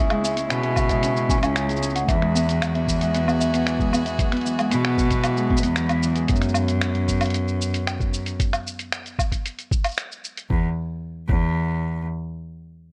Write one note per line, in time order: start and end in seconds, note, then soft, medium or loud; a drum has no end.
0.00 0.76 C#3 medium
0.00 2.09 C#3 medium
0.00 2.09 G#3 medium
0.00 0.96 A#3 medium
0.00 0.24 C#4 medium
0.00 0.19 D#4 loud
0.00 3.11 E4 loud
0.00 0.25 E5 loud
0.10 0.89 G#3 medium
0.10 finger snap soft
0.10 closed hi-hat soft
0.10 low woodblock medium
0.24 0.37 C#4 loud
0.24 0.37 E5 medium
0.24 shaker medium
0.37 0.50 C#4 medium
0.37 closed hi-hat soft
0.37 shaker soft
0.50 1.35 B2 loud
0.50 0.64 C#4 medium
0.50 finger snap loud
0.50 closed hi-hat medium
0.50 shaker soft
0.63 1.03 C#4 loud
0.63 0.76 E5 medium
0.63 closed hi-hat soft
0.76 1.55 C#3 medium
0.76 kick loud
0.76 low woodblock medium
0.76 shaker medium
0.89 1.68 G#3 medium
0.89 1.02 E5 loud
0.89 kick medium
0.89 closed hi-hat soft
0.89 shaker soft
1.03 1.16 C#4 loud
1.03 closed hi-hat medium
1.03 shaker soft
1.16 1.30 C#4 medium
1.16 shaker soft
1.29 1.42 C#4 loud
1.29 1.42 G#5 medium
1.29 kick loud
1.29 shaker medium
1.42 2.00 C#2 loud
1.42 1.82 C#4 loud
1.42 closed hi-hat soft
1.42 low woodblock medium
1.42 shaker soft
1.55 2.13 C#3 medium
1.55 1.63 G#5 medium
1.55 finger snap medium
1.55 closed hi-hat soft
1.55 shaker soft
1.69 2.13 G#3 medium
1.69 closed hi-hat soft
1.69 shaker soft
1.76 shaker soft
1.82 1.95 C#4 medium
1.82 shaker medium
1.90 shaker soft
1.95 4.85 C#4 medium
1.95 2.08 F#5 medium
1.95 closed hi-hat soft
1.95 shaker soft
2.08 4.11 E2 loud
2.08 6.29 E3 medium
2.08 2.86 E3 medium
2.08 2.21 E5 loud
2.08 kick loud
2.08 closed hi-hat medium
2.08 shaker soft
2.21 3.00 G#3 medium
2.21 6.29 F#4 medium
2.21 finger snap soft
2.28 6.29 B3 medium
2.35 2.48 B3 loud
2.35 6.29 G#4 medium
2.35 2.48 E5 medium
2.35 shaker medium
2.48 2.74 B3 medium
2.48 closed hi-hat soft
2.48 shaker soft
2.61 3.39 F#3 medium
2.61 finger snap medium
2.61 closed hi-hat medium
2.61 low woodblock medium
2.61 shaker soft
2.74 3.14 B3 loud
2.74 2.87 E5 medium
2.74 closed hi-hat soft
2.87 3.66 E3 medium
2.87 kick medium
2.87 shaker medium
3.01 3.78 G#3 medium
3.01 3.14 E5 medium
3.01 closed hi-hat soft
3.01 shaker soft
3.14 3.27 B3 loud
3.14 closed hi-hat medium
3.14 shaker soft
3.28 3.53 B3 medium
3.28 low woodblock medium
3.28 shaker soft
3.40 4.18 F#3 medium
3.40 3.53 E5 medium
3.40 shaker medium
3.54 3.93 B3 loud
3.54 closed hi-hat soft
3.54 shaker soft
3.66 4.44 E3 medium
3.66 3.79 E5 medium
3.66 finger snap medium
3.66 closed hi-hat soft
3.66 shaker soft
3.79 4.57 G#3 medium
3.79 kick loud
3.79 shaker soft
3.93 4.05 B3 loud
3.93 low woodblock medium
3.93 shaker medium
4.06 4.31 B3 medium
4.06 4.18 E5 loud
4.06 closed hi-hat soft
4.06 shaker soft
4.19 4.97 F#3 medium
4.19 kick loud
4.19 closed hi-hat medium
4.19 shaker soft
4.32 4.71 B3 medium
4.32 finger snap soft
4.32 closed hi-hat soft
4.37 closed hi-hat soft
4.41 5.23 E3 medium
4.41 closed hi-hat soft
4.46 shaker medium
4.59 5.36 G#3 medium
4.59 closed hi-hat soft
4.59 low woodblock medium
4.59 shaker soft
4.71 5.56 B2 loud
4.71 4.84 B3 loud
4.71 closed hi-hat medium
4.71 shaker soft
4.85 5.10 B3 medium
4.85 finger snap medium
4.85 closed hi-hat soft
4.98 5.76 F#3 medium
4.98 kick loud
4.98 shaker medium
5.10 5.50 B3 medium
5.10 kick medium
5.10 closed hi-hat soft
5.10 shaker soft
5.24 6.02 E3 medium
5.24 closed hi-hat medium
5.24 low woodblock medium
5.24 shaker soft
5.37 6.15 G#3 medium
5.37 shaker soft
5.50 5.63 B3 loud
5.50 kick loud
5.57 shaker medium
5.63 6.22 E2 loud
5.63 5.89 B3 medium
5.63 closed hi-hat soft
5.63 shaker soft
5.76 6.34 F#3 medium
5.76 finger snap medium
5.76 closed hi-hat medium
5.76 shaker soft
5.89 9.00 B3 medium
5.89 closed hi-hat soft
5.89 low woodblock medium
5.89 shaker soft
6.03 6.34 E3 medium
6.03 shaker medium
6.16 6.34 G#3 medium
6.16 closed hi-hat soft
6.16 shaker soft
6.28 8.32 F#2 loud
6.28 kick loud
6.28 closed hi-hat medium
6.28 shaker soft
6.36 shaker soft
6.42 finger snap soft
6.42 closed hi-hat soft
6.42 shaker soft
6.49 shaker soft
6.54 low woodblock medium
6.54 shaker medium
6.68 closed hi-hat soft
6.68 shaker soft
6.82 finger snap loud
6.82 closed hi-hat medium
6.82 shaker soft
6.95 closed hi-hat soft
7.08 kick medium
7.08 shaker medium
7.21 closed hi-hat soft
7.21 low woodblock medium
7.21 shaker soft
7.26 closed hi-hat soft
7.30 closed hi-hat soft
7.34 closed hi-hat medium
7.34 shaker soft
7.48 shaker soft
7.61 shaker medium
7.74 closed hi-hat soft
7.74 shaker soft
7.87 finger snap medium
7.87 closed hi-hat soft
7.87 low woodblock medium
7.87 shaker soft
8.00 kick loud
8.00 shaker soft
8.14 shaker medium
8.26 closed hi-hat soft
8.26 shaker soft
8.40 kick loud
8.40 closed hi-hat medium
8.40 shaker soft
8.53 finger snap soft
8.53 closed hi-hat soft
8.53 low woodblock medium
8.53 shaker soft
8.67 shaker medium
8.79 closed hi-hat soft
8.79 shaker soft
8.92 finger snap loud
8.92 closed hi-hat medium
8.92 shaker soft
9.06 closed hi-hat soft
9.06 shaker soft
9.19 kick loud
9.19 low woodblock medium
9.19 shaker medium
9.32 kick medium
9.32 closed hi-hat soft
9.32 shaker soft
9.46 closed hi-hat medium
9.46 shaker soft
9.59 closed hi-hat soft
9.59 shaker soft
9.71 kick loud
9.71 shaker medium
9.84 closed hi-hat medium
9.84 low woodblock medium
9.84 shaker soft
9.88 shaker soft
9.91 shaker soft
9.93 shaker soft
9.96 finger snap medium
9.96 closed hi-hat medium
9.96 shaker soft
9.98 shaker soft
10.12 shaker soft
10.24 shaker medium
10.37 closed hi-hat soft
10.37 shaker soft
10.50 10.65 E2 medium
10.50 kick loud
11.29 12.04 E2 loud
11.29 kick loud